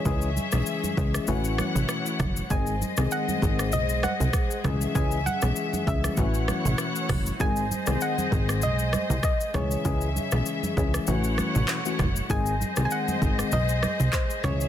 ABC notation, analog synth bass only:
X:1
M:4/4
L:1/16
Q:"Swing 16ths" 1/4=98
K:G#phr
V:1 name="Analog synth bass" clef=bass
C,,3 B,,, z2 C,,2 A,,,3 A,,, z2 F,,,2 | G,,,3 ^B,,, z2 G,,,2 =B,,,3 ^B,,, z2 C,,2 | C,,3 B,,, z2 C,,2 A,,,3 A,,, z2 F,,,2 | G,,,3 ^B,,, z2 G,,,2 =B,,,3 ^B,,, z2 C,,2 |
C,,3 B,,, z2 C,,2 A,,,3 A,,, z2 F,,,2 | G,,,3 ^B,,, z2 G,,,2 =B,,,3 ^B,,, z2 C,,2 |]